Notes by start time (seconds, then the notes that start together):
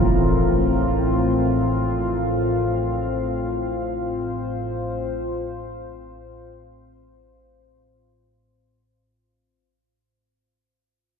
Already playing: A1 A2 C4 F4 A#4 F5
2.70 C5